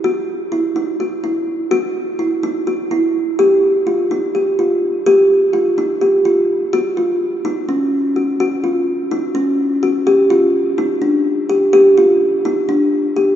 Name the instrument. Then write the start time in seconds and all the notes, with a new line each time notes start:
kalimba
0.04 F#4
0.52 E4
0.76 D#4
1.00 F#4
1.24 E4
1.71 F#4
2.19 E4
2.43 D#4
2.67 F#4
2.91 E4
3.39 G4
3.87 F4
4.11 D#4
4.35 G4
4.59 F4
5.06 G4
5.53 F4
5.78 D#4
6.01 G4
6.25 F4
6.73 F#4
6.97 F4
7.45 D#4
7.69 C#4
8.16 F#4
8.40 F#4
8.64 F4
9.11 D#4
9.35 C#4
9.83 F#4
10.07 G4
10.30 F4
10.78 D#4
11.02 D4
11.50 G4
11.73 G4
11.98 F4
12.45 D#4
12.69 D4
13.16 G4